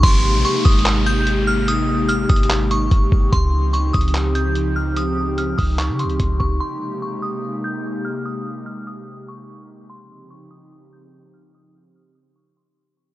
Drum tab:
CC |x-----------------------------------------------|------------------------------------------------|------------------------------------------------|------------------------------------------------|
HH |x-----------x-----x-x-x-x-----x-----x-----------|x-----------x-----x-x-x-x-----x-----x-----------|x-----------x-----x-x-x-x-----x-----x-----------|x-----------x-----o-----x-----x--x--x-----------|
CP |------------------------x-----------------------|------------------------x-----------------------|------------------------x-----------------------|------------------------x-----------------------|
BD |o-----------------o-----------------------------|------------------o-----------------o-----o-----|o-----------------o-----------------------------|------------------o-----------------o-----o-----|

CC |------------------------------------------------|------------------------------------------------|------------------------------------------------|------------------------------------------------|
HH |------------------------------------------------|------------------------------------------------|------------------------------------------------|------------------------------------------------|
CP |------------------------------------------------|------------------------------------------------|------------------------------------------------|------------------------------------------------|
BD |------------------------------------------------|------------------------------------------------|------------------------------------------------|------------------------------------------------|